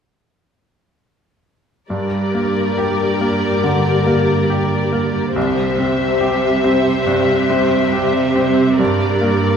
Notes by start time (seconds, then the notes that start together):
1.90 G2 G3 G4 A#4 D5
2.34 A#3
2.78 G4
3.21 A#3
3.64 D3
4.07 A#3
4.50 G4
4.93 A#3
5.35 C2 C3 G3 G4 C5 E5
5.78 C4
6.21 G4
6.64 C4
7.06 G2
7.50 C4
7.93 G4
8.36 C4
8.78 G2 G3 G4 A#4 D5
9.21 A#3